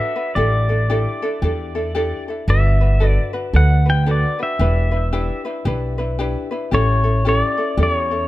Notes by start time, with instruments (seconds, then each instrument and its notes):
Already playing: ukulele D4 F#4 A4 B4, pedal steel guitar E5
0.16 ukulele D4 F#4 B4
0.35 upright bass A1, ukulele D4 E4 G4 A4, pedal steel guitar D5
0.69 ukulele D4 E4 A4
0.90 ukulele D4 E4 G4 A4
1.22 ukulele D4 E4 A4
1.42 upright bass E2, ukulele D4 E4 G4 A4
1.75 ukulele D4 E4 A4
1.95 ukulele D4 E4 G4 A4
2.28 ukulele D4 E4 A4
2.48 upright bass G1, ukulele D4 F#4 A4 B4, pedal steel guitar E5
2.81 ukulele D4 F#4 B4
3.00 ukulele D4 F#4 A4 B4
3.09 pedal steel guitar D5
3.33 ukulele D4 F#4 B4
3.53 upright bass D2, ukulele D4 F#4 A4 B4, pedal steel guitar F#5
3.86 ukulele D4 F#4 B4
3.90 pedal steel guitar G5
4.06 ukulele D4 F#4 A4 B4
4.11 pedal steel guitar D5
4.39 ukulele D4 F#4 B4, pedal steel guitar E5
4.59 upright bass E1, ukulele D4 E4 G4 B4
4.91 ukulele D4 E4 B4
5.13 ukulele D4 E4 G4 B4
5.45 ukulele D4 E4 B4
5.65 upright bass B1, ukulele D4 E4 G4 B4
5.98 ukulele D4 E4 B4
6.19 ukulele D4 E4 G4 B4
6.51 ukulele D4 E4 B4
6.71 upright bass A1, ukulele C#4 E4 G4 A4, pedal steel guitar C#5
7.04 ukulele C#4 E4 A4
7.25 ukulele C#4 E4 G4 A4, pedal steel guitar C#5
7.40 pedal steel guitar D5
7.58 ukulele C#4 E4 A4
7.77 upright bass E2, ukulele C#4 E4 G4 A4
7.83 pedal steel guitar C#5
8.11 ukulele C#4 E4 A4